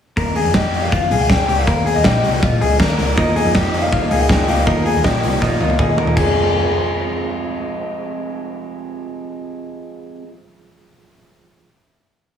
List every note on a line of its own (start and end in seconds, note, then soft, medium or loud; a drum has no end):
0.17 0.41 D#2 loud
0.17 0.36 A#4 medium
0.17 kick medium
0.17 closed hi-hat medium
0.36 0.55 G#4 medium
0.36 open hi-hat medium
0.45 1.12 F2 medium
0.54 0.90 G4 medium
0.54 0.81 D#5 medium
0.54 kick loud
0.54 snare loud
0.74 open hi-hat medium
0.83 0.92 F5 medium
0.92 1.11 F4 medium
0.92 1.22 F5 loud
0.92 kick medium
0.92 closed hi-hat medium
1.11 1.43 C#2 medium
1.11 1.46 G#4 medium
1.11 open hi-hat medium
1.21 1.31 G#5 loud
1.30 1.60 G5 loud
1.30 kick loud
1.30 snare loud
1.48 1.65 C#2 medium
1.48 1.67 G4 medium
1.48 open hi-hat medium
1.58 1.94 F5 loud
1.67 1.91 D#2 loud
1.67 1.85 A#4 medium
1.67 kick medium
1.67 closed hi-hat medium
1.86 2.04 G#4 medium
1.86 open hi-hat medium
1.95 2.04 D#2 medium
1.95 2.04 D#5 medium
2.04 2.21 A#1 medium
2.04 2.40 G4 medium
2.04 2.76 D#5 medium
2.04 kick loud
2.04 snare loud
2.04 closed hi-hat medium
2.24 2.40 C2 medium
2.24 open hi-hat medium
2.42 2.59 A#1 medium
2.42 2.61 F4 medium
2.42 kick loud
2.42 closed hi-hat medium
2.61 2.77 C#2 medium
2.61 2.80 G#4 medium
2.61 open hi-hat medium
2.80 2.96 D#2 medium
2.80 2.97 A#4 medium
2.80 kick loud
2.80 snare loud
2.80 closed hi-hat medium
2.98 3.14 C#2 medium
2.98 3.16 A#4 medium
2.98 open hi-hat medium
3.16 3.41 D#2 loud
3.16 3.36 D#3 medium
3.16 3.36 F3 medium
3.16 3.36 A#3 medium
3.16 3.35 D#4 loud
3.16 3.44 F4 loud
3.16 3.45 A#4 medium
3.16 3.35 A#4 medium
3.16 3.45 D#5 loud
3.16 kick medium
3.16 closed hi-hat medium
3.36 3.54 F3 soft
3.36 3.54 A#3 medium
3.36 3.55 D#4 medium
3.36 3.54 G#4 medium
3.36 open hi-hat medium
3.45 4.08 F2 medium
3.53 3.73 D#3 medium
3.53 3.74 F3 medium
3.53 3.73 A#3 medium
3.53 3.72 D#4 medium
3.53 3.82 F4 medium
3.53 3.90 G4 medium
3.53 3.82 A#4 medium
3.53 3.81 D#5 medium
3.53 3.82 D#5 medium
3.53 kick loud
3.53 snare loud
3.53 closed hi-hat medium
3.73 3.91 F3 soft
3.73 3.92 A#3 soft
3.73 3.92 D#4 medium
3.73 open hi-hat medium
3.82 3.91 F5 loud
3.91 4.11 D#3 medium
3.91 4.11 F3 medium
3.91 4.11 A#3 medium
3.91 4.09 D#4 medium
3.91 4.19 F4 medium
3.91 4.11 F4 medium
3.91 4.19 A#4 medium
3.91 4.20 D#5 medium
3.91 4.22 F5 loud
3.91 kick medium
3.91 closed hi-hat medium
4.10 4.43 C#2 medium
4.10 4.29 F3 soft
4.10 4.29 A#3 soft
4.10 4.29 D#4 medium
4.10 4.46 G#4 medium
4.10 open hi-hat medium
4.21 4.31 G#5 medium
4.28 4.48 D#3 medium
4.28 4.49 F3 medium
4.28 4.48 A#3 medium
4.28 4.47 D#4 medium
4.28 4.57 F4 medium
4.28 4.57 A#4 medium
4.28 4.57 D#5 medium
4.28 4.48 G5 loud
4.28 kick loud
4.28 snare loud
4.28 closed hi-hat medium
4.48 4.64 C#2 medium
4.48 4.66 F3 soft
4.48 4.66 A#3 soft
4.48 4.67 D#4 medium
4.48 4.67 G4 medium
4.48 5.01 F5 medium
4.48 open hi-hat medium
4.66 4.91 D#2 loud
4.66 4.86 D#3 medium
4.66 4.86 F3 medium
4.66 4.85 A#3 medium
4.66 4.84 D#4 medium
4.66 4.94 F4 loud
4.66 4.94 A#4 medium
4.66 4.85 A#4 medium
4.66 4.95 D#5 medium
4.66 kick loud
4.66 closed hi-hat medium
4.85 5.03 F3 soft
4.85 5.04 A#3 medium
4.85 5.04 D#4 medium
4.85 5.04 G#4 medium
4.85 open hi-hat medium
4.95 5.05 D#2 loud
5.03 5.20 A#1 medium
5.03 5.23 D#3 medium
5.03 5.23 F3 medium
5.03 5.23 A#3 medium
5.03 5.22 D#4 medium
5.03 5.31 F4 medium
5.03 5.40 G4 medium
5.03 5.32 A#4 medium
5.03 5.32 D#5 medium
5.03 kick loud
5.03 snare loud
5.23 5.39 C2 medium
5.23 5.41 F3 soft
5.23 5.42 A#3 medium
5.23 5.42 D#4 medium
5.23 open hi-hat medium
5.41 5.58 A#1 loud
5.41 5.60 D#3 medium
5.41 5.61 F3 medium
5.41 5.61 A#3 medium
5.41 5.60 D#4 medium
5.41 5.69 F4 medium
5.41 5.59 F4 medium
5.41 5.69 A#4 medium
5.41 5.70 D#5 medium
5.41 kick loud
5.41 snare soft
5.60 5.76 C#2 medium
5.60 5.78 F3 soft
5.60 5.79 A#3 medium
5.60 5.79 D#4 medium
5.60 5.79 F4 medium
5.60 high tom medium
5.70 high tom medium
5.79 5.95 D#2 medium
5.79 5.98 D#3 medium
5.79 5.98 F3 medium
5.79 5.97 A#3 medium
5.79 5.96 D#4 medium
5.79 6.07 F4 medium
5.79 5.97 G#4 medium
5.79 6.07 A#4 medium
5.79 6.07 D#5 medium
5.79 kick loud
5.79 mid tom medium
5.97 6.14 D#2 medium
5.97 6.17 F3 soft
5.97 6.17 A#3 medium
5.97 6.17 D#4 medium
5.97 6.16 A#4 medium
5.97 floor tom medium
6.07 floor tom medium
6.14 10.21 F1 medium
6.14 10.22 F2 medium
6.14 10.25 C3 medium
6.14 10.19 F4 medium
6.14 7.25 G#4 medium
6.14 10.22 G#4 medium
6.14 kick medium
6.14 crash medium
6.19 10.28 F3 medium
6.19 10.29 G#3 medium
6.19 10.32 C4 medium
6.19 10.24 C5 medium